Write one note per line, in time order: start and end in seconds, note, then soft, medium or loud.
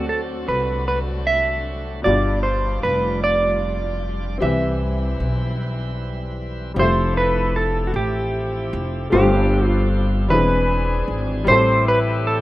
0.00 0.44 D2 medium
0.00 0.82 D3 medium
0.00 2.00 F#3 medium
0.00 2.03 A3 medium
0.00 1.99 C4 medium
0.00 2.01 C4 medium
0.00 2.01 C4 soft
0.00 2.01 D4 soft
0.00 4.37 D4 soft
0.00 2.00 F#4 medium
0.00 2.03 F#4 medium
0.00 2.00 A4 medium
0.00 2.01 A4 medium
0.00 2.02 D5 medium
0.09 0.20 A4 medium
0.48 2.01 C2 medium
0.48 0.87 B4 medium
0.88 0.98 B4 medium
1.27 2.04 E5 medium
2.02 2.80 G1 medium
2.02 3.19 G2 medium
2.02 4.35 B2 medium
2.02 6.72 G3 medium
2.02 4.38 F4 medium
2.02 4.37 F4 medium
2.02 2.41 D5 medium
2.06 4.38 G3 medium
2.06 4.38 D4 medium
2.06 4.37 F4 medium
2.06 4.38 G4 medium
2.06 4.37 D5 medium
2.06 4.39 D5 medium
2.43 2.83 C5 medium
2.83 4.37 F1 medium
2.83 3.23 B4 medium
3.24 4.37 D5 medium
4.38 5.16 C2 medium
4.38 5.55 E3 medium
4.38 6.72 G3 medium
4.38 6.71 C4 medium
4.38 6.72 C4 medium
4.38 6.73 E4 medium
4.38 6.72 G4 medium
4.38 6.72 B4 medium
4.42 6.75 C4 medium
4.42 6.75 E4 medium
4.42 6.74 B4 medium
4.42 5.95 E5 medium
4.42 6.75 E5 medium
5.20 6.73 B1 medium
6.74 7.90 F1 medium
6.74 9.08 F3 medium
6.74 6.82 G3 soft
6.74 6.83 G#3 soft
6.74 9.08 E4 medium
6.74 7.91 E4 medium
6.74 9.08 G4 medium
6.74 7.55 A4 medium
6.74 7.14 C5 loud
6.79 9.09 A3 medium
6.79 9.09 G4 medium
6.79 7.15 C5 medium
6.79 9.10 E5 medium
6.83 9.09 A3 medium
7.17 7.56 B4 medium
7.17 7.57 B4 medium
7.56 7.95 A4 medium
7.56 7.87 A4 medium
7.87 7.94 F#4 medium
7.94 8.69 A1 medium
7.94 9.09 C4 medium
7.94 9.09 E4 medium
7.94 9.13 G4 medium
7.94 9.11 G4 medium
8.73 9.09 F1 medium
9.10 10.30 G1 medium
9.10 10.26 G2 medium
9.10 10.29 F3 medium
9.10 10.29 A3 medium
9.10 10.27 C4 medium
9.10 10.30 F4 medium
9.10 10.29 G4 medium
9.10 9.67 G4 medium
9.10 10.31 G4 medium
9.14 10.27 C4 medium
9.14 10.27 D4 medium
9.14 9.88 G4 medium
9.14 10.31 C5 medium
9.67 9.87 F4 medium
10.28 11.04 E1 medium
10.28 11.44 E3 medium
10.28 10.36 G3 soft
10.28 11.44 C4 soft
10.28 11.45 C4 medium
10.28 11.47 D4 soft
10.28 11.47 D4 medium
10.28 11.44 D4 medium
10.28 11.48 E4 medium
10.28 11.47 G#4 medium
10.28 11.44 G#4 medium
10.28 11.14 B4 loud
10.28 11.15 B4 medium
10.35 11.50 G#3 medium
11.08 11.44 G#1 medium
11.44 12.41 A1 loud
11.44 12.41 A2 medium
11.44 12.41 E3 medium
11.44 12.41 G3 medium
11.44 12.41 A3 medium
11.44 12.41 C4 medium
11.44 12.41 E4 medium
11.44 12.41 G4 medium
11.44 11.84 C5 loud
11.44 11.88 C5 loud
11.49 12.41 E4 medium
11.49 12.41 A4 medium
11.88 12.27 B4 loud
11.88 11.99 B4 medium
12.27 12.41 A4 medium
12.27 12.37 A4 medium